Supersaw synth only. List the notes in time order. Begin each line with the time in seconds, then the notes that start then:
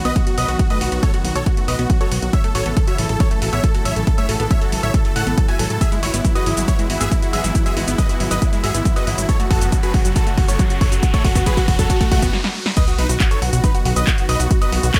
0.05 B4 D#5
0.16 F#4
0.27 F#4
0.38 B4 D#5
0.48 F#4
0.59 F#4
0.70 B4 D#5
0.81 F#4
0.92 F#4
1.03 A4 C#5
1.14 F#4
1.25 F#4
1.35 A4 C#5
1.46 F#4
1.57 F#4
1.68 B4 D#5
1.79 F#4
1.90 F#4
2.01 A4 C#5
2.12 F#4
2.22 F#4
2.33 C#5 E5
2.44 A4
2.55 A4 C#5
2.66 A4
2.77 A4
2.87 C#5 E5
2.98 A4
3.09 A4
3.20 A4 C#5
3.31 A4
3.42 A4
3.53 C#5 E5
3.64 A4
3.75 A4
3.85 C#5 E5
3.96 A4
4.07 A4
4.18 C#5 E5
4.29 A4
4.40 A4
4.51 C#5 E5
4.61 A4
4.72 A4
4.83 C#5 E5
4.94 A4
5.05 A4
5.16 A4 F#5
5.26 A4
5.37 A4
5.48 E5 G#5
5.59 A4
5.70 A4
5.81 G#4 E5
5.92 E4
6.03 E4 C#5
6.14 E4
6.24 E4
6.35 B4 D#5
6.46 E4
6.57 E4
6.68 E4 C#5
6.79 E4
6.90 E4
7.00 G#4 E5
7.11 E4
7.22 E4
7.33 G#4 E5
7.44 E4
7.55 E4
7.66 G#4 E5
7.77 E4
7.88 E4
7.98 B4 D#5
8.09 E4
8.20 E4
8.31 B4 D#5
8.42 E4
8.53 E4
8.64 G#4 E5
8.74 E4
8.85 E4
8.96 B4 D#5
9.07 E4
9.18 E4
9.29 A4 C#5
9.40 F#4
9.51 F#4 A4
9.61 F#4
9.72 F#4
9.83 G#4 B4
9.94 F#4
10.05 F#4
10.16 F#4 A4
10.26 F#4
10.37 F#4
10.48 A4 C#5
10.59 F#4
10.70 F#4
10.81 A4 C#5
10.92 F#4
11.03 F#4
11.14 A4 C#5
11.24 F#4
11.35 F#4
11.46 G#4 B4
11.57 F#4
11.68 F#4
11.79 F#4 A4
11.90 F#4
12.01 F#4
12.11 A3 F#4
12.22 F#4
12.77 B4 D#5
12.88 F#4
12.98 D#4 B4
13.09 F#4
13.20 F#4
13.31 A4 C#5
13.42 F#4
13.53 F#4
13.63 D#4 B4
13.74 F#4
13.85 F#4
13.96 B4 D#5
14.07 F#4
14.18 F#4
14.29 B4 D#5
14.40 F#4
14.51 F#4
14.61 B4 D#5
14.72 F#4
14.83 F#4
14.94 A4 C#5